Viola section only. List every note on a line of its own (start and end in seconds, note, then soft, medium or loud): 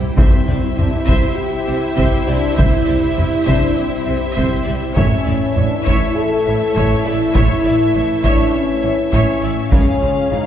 0.19 0.46 C5 medium
0.49 0.57 C5 medium
0.80 0.88 C5 soft
1.09 1.36 C5 medium
1.68 1.76 C5 medium
1.97 2.25 C5 medium
2.27 2.35 C5 medium
2.57 2.85 C5 medium
2.88 2.96 C5 soft
3.17 3.25 C5 soft
3.47 3.75 C5 medium
4.08 4.16 C5 medium
4.37 4.64 C5 medium
4.67 4.75 C5 medium
4.96 5.24 C#5 medium
5.26 5.34 E5 medium
5.56 5.64 C#5 soft
5.87 6.15 C#5 medium
6.48 6.56 C#5 soft
6.76 7.03 C#5 medium
7.07 7.15 E5 medium
7.35 7.62 C#5 medium
7.67 7.75 E5 soft
7.95 8.03 C#5 soft
8.25 8.52 C#5 medium
8.84 8.92 C#5 medium
9.14 9.41 C#5 medium
9.43 9.51 E5 medium
9.72 9.99 G#4 medium
10.01 10.09 G#4 soft
10.30 10.38 G#4 soft